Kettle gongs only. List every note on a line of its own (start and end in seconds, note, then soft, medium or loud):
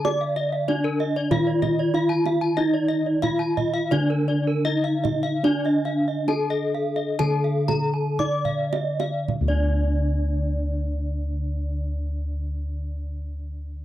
0.00 0.64 D3 medium
0.05 1.91 D5 medium
0.68 0.76 D#4 soft
1.31 3.19 D#3 medium
1.94 2.02 D#4 medium
2.58 3.22 D#4 medium
3.23 3.31 D#4 soft
3.92 6.25 D3 medium
4.65 4.73 D#4 soft
5.44 8.16 D4 medium
6.28 6.36 D#4 soft
7.20 10.40 D3 medium
8.20 8.28 D#4 medium
9.41 13.85 D2 medium